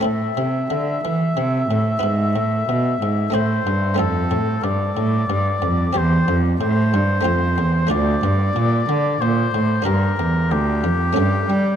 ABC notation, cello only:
X:1
M:3/4
L:1/8
Q:1/4=92
K:Am
V:1 name="Cello" clef=bass
A,, C, D, E, C, A,, | ^G,, A,, B,, G,, A,, =G,, | F,, A,, G,, A,, G,, F,, | E,, F,, A,, G,, F,, E,, |
[K:Dm] D,, G,, B,, D, B,, A,, | G,, E,, D,, F,, G,, G, |]